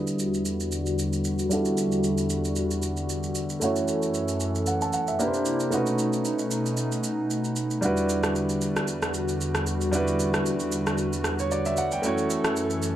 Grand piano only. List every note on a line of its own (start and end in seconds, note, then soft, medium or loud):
0.00 1.46 G3 medium
0.00 1.47 D4 medium
0.00 1.47 E4 medium
0.00 1.48 F#4 medium
0.00 1.52 B4 medium
1.49 3.57 G3 medium
1.49 3.57 D4 medium
1.49 3.58 E4 medium
1.49 3.58 F#4 medium
1.54 3.59 A4 medium
3.60 5.15 A3 medium
3.60 5.16 C#4 medium
3.60 5.17 E4 medium
3.60 5.17 F#4 medium
3.64 5.18 C#5 medium
4.67 4.81 F#5 medium
4.82 4.93 A5 medium
4.94 5.07 F#5 medium
5.08 5.33 E5 medium
5.19 5.72 A#3 medium
5.19 5.72 D4 medium
5.19 5.72 E4 medium
5.19 5.73 G4 medium
5.19 5.27 B4 medium
5.27 5.76 C5 medium
5.70 7.78 A3 medium
5.70 7.78 C#4 medium
5.70 7.79 D#4 medium
5.70 7.79 F#4 medium
5.75 7.80 B4 medium
7.81 9.88 G3 medium
7.81 9.89 D4 medium
7.81 9.89 E4 medium
7.81 9.90 F#4 medium
7.85 9.91 B4 medium
9.91 11.99 G3 medium
9.91 11.99 D4 medium
9.91 12.00 E4 medium
9.91 12.01 F#4 medium
9.96 12.01 B4 medium
11.40 11.51 C#5 medium
11.52 11.65 D5 medium
11.66 11.77 E5 medium
11.78 11.91 F#5 medium
11.92 12.17 G5 medium
12.02 12.96 A3 medium
12.02 12.96 C#4 medium
12.02 12.96 E4 medium
12.02 12.96 F#4 medium
12.06 12.96 C#5 medium